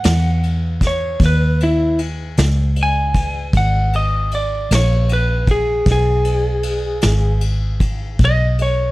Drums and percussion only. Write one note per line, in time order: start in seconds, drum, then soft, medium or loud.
0.04 snare loud
0.04 ride medium
0.43 ride medium
0.81 kick medium
0.81 snare soft
0.81 ride medium
1.20 kick loud
1.20 snare soft
1.20 ride medium
1.60 ride medium
1.99 ride medium
2.37 snare loud
2.37 ride medium
2.76 ride medium
3.14 kick medium
3.14 ride medium
3.53 kick loud
3.53 ride medium
3.93 ride medium
4.31 ride medium
4.71 snare loud
4.71 ride medium
5.09 ride medium
5.47 kick medium
5.47 ride medium
5.86 kick loud
5.86 snare soft
5.86 ride medium
6.25 ride medium
6.63 ride medium
7.01 snare medium
7.01 ride medium
7.41 ride medium
7.80 kick medium
7.80 ride medium
8.19 kick loud
8.19 ride medium
8.59 ride medium